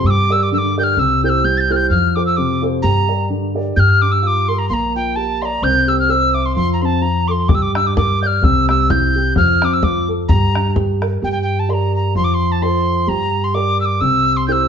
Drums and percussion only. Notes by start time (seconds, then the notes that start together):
7.49 bodhran
7.75 bodhran
7.97 bodhran
8.44 bodhran
8.69 bodhran
8.90 bodhran
9.36 bodhran
9.62 bodhran
9.83 bodhran
10.29 bodhran
10.55 bodhran
10.76 bodhran
11.02 bodhran